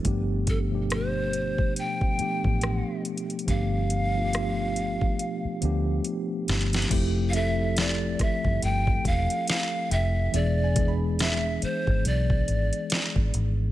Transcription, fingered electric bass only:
X:1
M:4/4
L:1/16
Q:"Swing 16ths" 1/4=70
K:Gmix
V:1 name="Fingered electric bass" clef=bass
G,,,6- G,,, z4 A,,,2 z3 | G,,,6- G,,, z3 D,,2 z2 G,,,2 | F,,,6 z G,,, G,,,2 E,,, z3 F,,,2 | E,,,6 z ^G,,, B,,,2 G,,, z2 G,,, G,,,2 |]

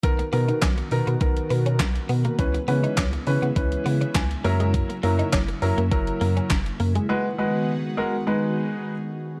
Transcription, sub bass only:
X:1
M:4/4
L:1/16
Q:1/4=102
K:B
V:1 name="Sub bass" clef=bass
B,,,2 B,,2 B,,,2 B,, B,, B,,,2 B,,2 B,,,2 B,,2 | C,,2 C,2 C,,2 C, C, C,,2 C,2 C,,2 F,,2- | F,,2 F,,2 F,,,2 F,, F,, F,,,2 F,,2 F,,,2 F,,2 | z16 |]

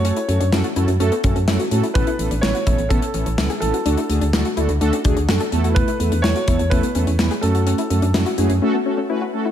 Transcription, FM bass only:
X:1
M:4/4
L:1/16
Q:1/4=126
K:F#m
V:1 name="FM bass" clef=bass
F,, z F,, F,, F,, z F,, F,, F,, z F,, F,, F,, z A,, z | A,,, z A,,, A,,, A,,, z A,,, A,,, A,,, z A,,, A,,, C,, z A,,, z | D,, z D,, D,, D,, z D,, D,, D,, z D,, D,, F,, z E,,2- | E,, z E,, E,, E,, z E,, E,, E,, z E,, E,, E,, z F,,2- |
F,, z F,, F,, F,, z F,, F,, z8 |]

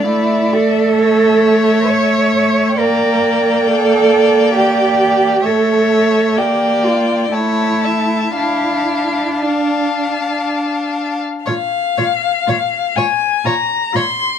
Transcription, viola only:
X:1
M:3/4
L:1/8
Q:1/4=62
K:Dm
V:1 name="Viola"
A,6 | B,6 | A,2 B,2 A,2 | D6 |
[K:Bbm] F F F F F F |]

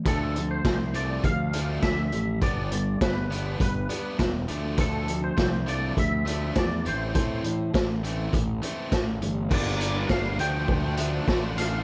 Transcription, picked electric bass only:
X:1
M:4/4
L:1/8
Q:1/4=102
K:Ddor
V:1 name="Picked electric bass" clef=bass
D,,2 C,,2 D,,2 D,, A,,, | G,,,2 G,,,2 G,,, z E,,, D,,- | D,,2 C,,2 D,,2 E,, A,,, | A,,2 A,,,2 A,,, z A,,, G,,, |
[K:Gdor] G,,,2 G,,, D,,3 A,,,2 |]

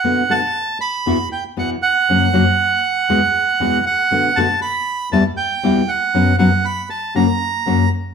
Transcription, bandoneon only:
X:1
M:4/4
L:1/8
Q:1/4=118
K:Bm
V:1 name="Bandoneon"
f a2 b2 g f f- | f6- f f- | f a b2 a g2 f- | f f b a ^a3 z |]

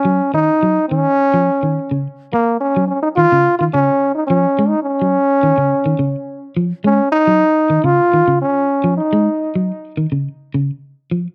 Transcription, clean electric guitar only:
X:1
M:4/4
L:1/16
Q:1/4=106
K:Ebm
V:1 name="Clean electric guitar" clef=bass
G,2 E,2 G,2 E,2 z F,2 E,2 D,2 z | z3 G,2 z E, D,2 E, D,2 z2 F,2 | A,2 z G,2 z E, D,2 E, D,2 z2 F,2 | A,2 z G,2 z E, D,2 E, D,2 z2 F,2 |
A,2 z G,2 z E, D,2 z D,2 z2 F,2 |]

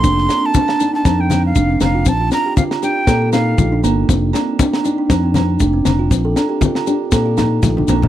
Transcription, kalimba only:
X:1
M:4/4
L:1/16
Q:"Swing 16ths" 1/4=119
K:Fmix
V:1 name="Kalimba"
D2 C2 D2 E D2 C2 z D C2 F- | F F2 G F2 G2 A F E2 F D B,2 | D2 C2 D2 E D2 C2 z D C2 F- | F A2 G F2 G2 A F E2 F D B,2 |]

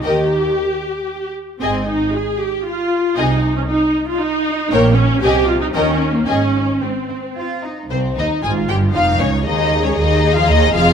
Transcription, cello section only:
X:1
M:3/4
L:1/16
Q:1/4=115
K:Ab
V:1 name="Cello section" clef=bass
E,4 z8 | A,,4 z8 | C,4 z8 | B,,4 C,4 E,4 |
A,,4 A,2 C2 F2 E2 | C,,2 E,,2 A,,2 G,,2 F,,2 D,,2 | E,,3 D,, E,,3 F,, E,,2 F,,2 |]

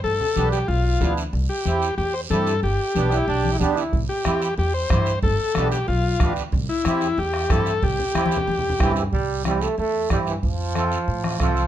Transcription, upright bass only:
X:1
M:4/4
L:1/8
Q:1/4=185
K:C
V:1 name="Upright bass" clef=bass
G,,, z B,,,2 B,,,2 D,,2 | C,, z E,,2 E,,2 G,,2 | G,,, z B,,,2 B,,,2 D,,2 | C,, z E,,2 E,,2 G,,2 |
G,,, z B,,,2 B,,,2 D,,2 | C,, z E,,2 E,,2 G,,2 | C,, z E,,2 E,,2 G,,2 | C,,4 E,,2 G,,2 |
F,,4 A,,2 C,,2 |]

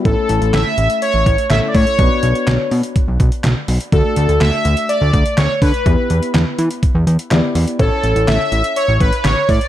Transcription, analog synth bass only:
X:1
M:4/4
L:1/16
Q:1/4=124
K:Amix
V:1 name="Analog synth bass" clef=bass
A,,, z A,,, A,,, A,,, z A,,, z2 A,,, A,,, z A,,, z A,, z | B,,, z B,,, z B,,, z B,, z2 B,,, B,,, z B,,, z B,,, z | D,, z D,, D,, D,, z D,, z2 D,, D,, z D,, z D, z | E,, z E,, z E,, z E, z2 E,, E,, z E,, z E,, z |
A,,, z A,,, A,,, A,,, z A,,, z2 A,,, A,,, z A,,, z A,, z |]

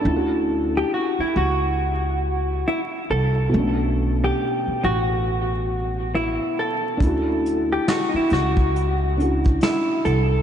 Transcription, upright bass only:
X:1
M:4/4
L:1/16
Q:"Swing 16ths" 1/4=69
K:D
V:1 name="Upright bass" clef=bass
D,,4 z2 C,,6 z2 =C,,2 | B,,,4 z2 A,,,6- A,,, z3 | D,,4 z2 C,,6 z2 =C,,2 |]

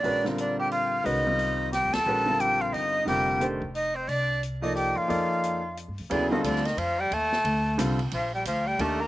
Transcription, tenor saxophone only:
X:1
M:3/4
L:1/8
Q:"Swing" 1/4=178
K:Fmix
V:1 name="Tenor saxophone"
D z D G F2 | E4 G A- | A2 G F E2 | G2 z2 E C |
D2 z E G F- | F4 z2 | [K:Eblyd] D, E, D, E, F, G, | A,4 z2 |
F, G, F, G, A, B, |]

